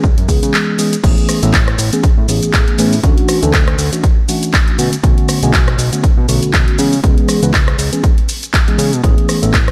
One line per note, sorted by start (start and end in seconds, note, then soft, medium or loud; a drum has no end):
0.04 0.15 C#2 medium
0.04 kick loud
0.04 shaker soft
0.18 0.27 F#2 medium
0.18 closed hi-hat medium
0.28 0.40 C#2 medium
0.28 0.76 E3 medium
0.28 0.76 G#3 medium
0.28 0.76 B3 medium
0.28 0.76 C#4 medium
0.28 0.76 G#4 medium
0.28 kick medium
0.28 open hi-hat loud
0.28 shaker medium
0.43 0.54 C#3 loud
0.43 closed hi-hat medium
0.43 shaker soft
0.54 clap loud
0.54 shaker soft
0.78 0.94 E3 medium
0.78 0.94 G#3 medium
0.78 0.94 B3 medium
0.78 0.94 C#4 medium
0.78 0.94 G#4 medium
0.78 open hi-hat loud
0.78 shaker medium
0.93 closed hi-hat medium
0.93 shaker soft
1.03 1.15 A1 loud
1.03 1.39 E3 loud
1.03 1.39 A3 medium
1.03 1.39 B3 medium
1.03 1.40 C#4 medium
1.03 1.40 G#4 loud
1.03 kick loud
1.03 closed hi-hat medium
1.03 crash loud
1.03 shaker soft
1.18 closed hi-hat soft
1.29 cross-stick medium
1.29 open hi-hat loud
1.29 shaker medium
1.43 1.76 A1 medium
1.43 1.55 E3 medium
1.43 1.55 A3 medium
1.43 1.55 B3 medium
1.43 1.56 C#4 medium
1.43 1.56 A4 loud
1.43 closed hi-hat medium
1.43 shaker soft
1.54 kick loud
1.54 clap loud
1.54 closed hi-hat medium
1.54 shaker soft
1.68 cross-stick medium
1.68 closed hi-hat soft
1.79 1.90 A1 medium
1.79 open hi-hat loud
1.79 shaker medium
1.93 2.05 E3 medium
1.93 2.05 A3 medium
1.93 2.06 B3 medium
1.93 2.06 C#4 medium
1.93 2.06 G#4 medium
1.93 closed hi-hat medium
1.93 shaker soft
2.03 2.15 A2 soft
2.03 kick loud
2.03 closed hi-hat medium
2.03 shaker soft
2.18 2.27 A2 medium
2.28 2.40 A1 loud
2.28 2.76 E3 medium
2.28 2.76 A3 medium
2.28 2.76 B3 medium
2.28 2.76 C#4 medium
2.28 2.76 G#4 medium
2.28 open hi-hat loud
2.28 shaker medium
2.42 2.51 A1 soft
2.42 closed hi-hat medium
2.42 shaker soft
2.54 2.65 A1 medium
2.54 kick loud
2.54 clap loud
2.54 closed hi-hat medium
2.54 shaker soft
2.68 closed hi-hat soft
2.78 3.00 A2 medium
2.78 2.94 E3 medium
2.78 2.94 A3 medium
2.78 2.94 B3 medium
2.78 2.94 C#4 medium
2.78 2.94 G#4 medium
2.78 open hi-hat loud
2.78 shaker medium
2.93 open hi-hat medium
2.93 shaker soft
3.03 3.15 D2 loud
3.03 3.39 E3 loud
3.03 3.39 A3 medium
3.03 3.39 C#4 medium
3.03 3.40 D4 medium
3.03 3.40 F#4 loud
3.03 kick loud
3.03 closed hi-hat medium
3.03 shaker soft
3.18 closed hi-hat soft
3.29 cross-stick medium
3.29 open hi-hat loud
3.29 shaker medium
3.42 3.76 D2 medium
3.42 3.55 E3 medium
3.42 3.55 A3 medium
3.42 3.55 C#4 medium
3.42 3.55 D4 medium
3.42 3.56 A4 loud
3.42 closed hi-hat medium
3.42 shaker soft
3.54 kick loud
3.54 clap loud
3.54 closed hi-hat medium
3.54 shaker soft
3.68 cross-stick medium
3.68 closed hi-hat soft
3.78 3.90 D2 medium
3.78 open hi-hat loud
3.78 shaker medium
3.92 4.05 E3 medium
3.92 4.05 A3 medium
3.92 4.05 C#4 medium
3.92 4.05 D4 medium
3.92 4.06 F#4 medium
3.92 closed hi-hat medium
3.92 shaker soft
4.04 kick loud
4.04 closed hi-hat medium
4.04 shaker soft
4.28 4.76 E3 medium
4.28 4.76 A3 medium
4.28 4.76 C#4 medium
4.28 4.76 D4 medium
4.28 4.76 F#4 medium
4.28 open hi-hat loud
4.28 shaker medium
4.43 closed hi-hat medium
4.43 shaker soft
4.54 kick loud
4.54 clap loud
4.54 closed hi-hat medium
4.54 shaker soft
4.68 closed hi-hat soft
4.78 4.90 B2 medium
4.78 4.94 D3 medium
4.78 4.94 A3 medium
4.78 4.94 B3 medium
4.78 4.94 C#4 medium
4.78 4.94 F#4 medium
4.78 open hi-hat loud
4.78 shaker medium
4.93 closed hi-hat medium
4.93 shaker soft
5.03 5.15 B1 loud
5.03 5.39 D3 loud
5.03 5.39 A3 medium
5.03 5.39 B3 medium
5.03 5.39 C#4 medium
5.03 5.39 F#4 loud
5.03 kick loud
5.03 closed hi-hat medium
5.03 shaker soft
5.18 closed hi-hat soft
5.29 cross-stick medium
5.29 open hi-hat loud
5.29 shaker medium
5.42 5.76 B1 medium
5.42 5.55 D3 medium
5.42 5.55 A3 medium
5.42 5.56 B3 medium
5.42 5.56 C#4 medium
5.42 5.56 G#4 loud
5.42 closed hi-hat medium
5.42 shaker soft
5.54 kick loud
5.54 clap loud
5.54 closed hi-hat medium
5.54 shaker soft
5.68 cross-stick medium
5.68 closed hi-hat soft
5.78 5.90 B1 medium
5.78 open hi-hat loud
5.78 shaker medium
5.92 6.05 D3 medium
5.92 6.05 A3 medium
5.92 6.05 B3 medium
5.92 6.05 C#4 medium
5.92 6.06 F#4 medium
5.92 closed hi-hat medium
5.92 shaker soft
6.03 6.15 B2 soft
6.03 kick loud
6.03 closed hi-hat medium
6.03 shaker soft
6.17 6.27 B2 medium
6.28 6.40 B1 loud
6.28 6.76 D3 medium
6.28 6.76 A3 medium
6.28 6.76 B3 medium
6.28 6.76 C#4 medium
6.28 6.76 F#4 medium
6.28 open hi-hat loud
6.28 shaker medium
6.42 6.51 B1 soft
6.42 closed hi-hat medium
6.42 shaker soft
6.53 6.65 B1 medium
6.53 kick loud
6.53 clap loud
6.53 closed hi-hat medium
6.53 shaker soft
6.68 closed hi-hat soft
6.78 7.00 C#3 loud
6.78 6.94 E3 medium
6.78 6.94 G#3 medium
6.78 6.94 B3 medium
6.78 6.94 C#4 medium
6.78 6.94 G#4 medium
6.78 open hi-hat loud
6.78 shaker medium
6.93 open hi-hat medium
6.93 shaker soft
7.03 7.15 C#2 loud
7.03 7.39 E3 loud
7.03 7.39 G#3 medium
7.03 7.39 B3 medium
7.03 7.39 C#4 medium
7.03 7.40 G#4 loud
7.03 kick loud
7.03 closed hi-hat medium
7.03 shaker soft
7.18 closed hi-hat soft
7.29 cross-stick medium
7.29 open hi-hat loud
7.29 shaker medium
7.42 7.76 C#2 medium
7.42 7.55 E3 medium
7.42 7.55 G#3 medium
7.42 7.55 B3 medium
7.42 7.55 C#4 medium
7.42 7.55 B4 loud
7.42 closed hi-hat medium
7.42 shaker soft
7.54 kick loud
7.54 clap loud
7.54 closed hi-hat medium
7.54 shaker soft
7.68 cross-stick medium
7.68 closed hi-hat soft
7.79 7.90 C#2 medium
7.79 open hi-hat loud
7.79 shaker medium
7.92 8.05 E3 medium
7.92 8.05 G#3 medium
7.92 8.05 B3 medium
7.92 8.05 C#4 medium
7.92 8.06 G#4 medium
7.92 closed hi-hat medium
7.92 shaker soft
8.04 kick loud
8.04 closed hi-hat medium
8.04 shaker soft
8.18 closed hi-hat soft
8.29 open hi-hat loud
8.29 shaker medium
8.43 closed hi-hat soft
8.43 shaker soft
8.54 kick loud
8.54 clap loud
8.54 closed hi-hat medium
8.54 shaker soft
8.67 8.90 E3 medium
8.67 8.90 G#3 medium
8.67 8.90 B3 medium
8.67 8.90 C#4 medium
8.67 8.90 G#4 loud
8.67 closed hi-hat soft
8.78 8.94 C#3 loud
8.78 open hi-hat loud
8.78 shaker medium
8.93 9.02 B2 medium
8.93 closed hi-hat soft
8.93 shaker soft
9.03 9.15 A1 loud
9.03 9.39 E3 loud
9.03 9.39 A3 medium
9.03 9.39 B3 medium
9.03 9.39 C#4 medium
9.03 9.39 G#4 loud
9.03 kick loud
9.03 closed hi-hat medium
9.03 shaker soft
9.18 closed hi-hat soft
9.29 cross-stick medium
9.29 open hi-hat loud
9.29 shaker medium
9.42 9.71 A1 medium
9.42 9.55 E3 medium
9.42 9.55 A3 medium
9.42 9.55 B3 medium
9.42 9.55 C#4 medium
9.42 9.55 A4 loud
9.42 closed hi-hat medium
9.42 shaker soft
9.54 kick loud
9.54 clap loud
9.54 closed hi-hat medium
9.54 shaker soft
9.68 cross-stick medium
9.68 closed hi-hat soft